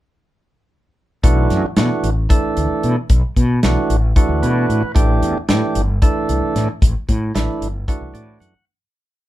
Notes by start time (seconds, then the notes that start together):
1.23 B1 E3 A3 D4 F#4, kick, closed hi-hat
1.50 F#2, snare, closed hi-hat
1.64 muted fretless electric bass stroke
1.77 B2 E3 A3 D4 F#4, snare, closed hi-hat
2.03 A1, closed hi-hat
2.29 E3 A3 D4 A4, kick, closed hi-hat
2.57 D2, closed hi-hat
2.71 muted fretless electric bass stroke
2.83 B2, closed hi-hat
3.10 B1, kick, closed hi-hat
3.36 B2, kick, closed hi-hat
3.63 B1 E3 A3 D4 F#4, snare, closed hi-hat
3.90 A1, closed hi-hat
4.16 E3 A3 D4 F#4, kick, closed hi-hat
4.29 D2
4.43 B2 B4, closed hi-hat
4.70 A2, closed hi-hat
4.83 muted fretless electric bass stroke
4.95 A1 E3 A3 D4 G4, kick, closed hi-hat
5.22 E2, closed hi-hat
5.49 A2 E3 A3 D4 G4, snare, closed hi-hat
5.75 G1, closed hi-hat
6.02 E3 A3 D4 A4, kick, closed hi-hat
6.29 C2, closed hi-hat
6.43 muted fretless electric bass stroke
6.55 A2, snare, closed hi-hat
6.82 A1, kick, closed hi-hat
7.09 A2, kick, closed hi-hat
7.35 A1 E3 A3 D4 E4, snare, closed hi-hat
7.61 G1, closed hi-hat
7.88 E3 A3 D4 F#4, kick, closed hi-hat
8.01 C2
8.14 A2 D5, closed hi-hat
8.40 F#2 F#5, closed hi-hat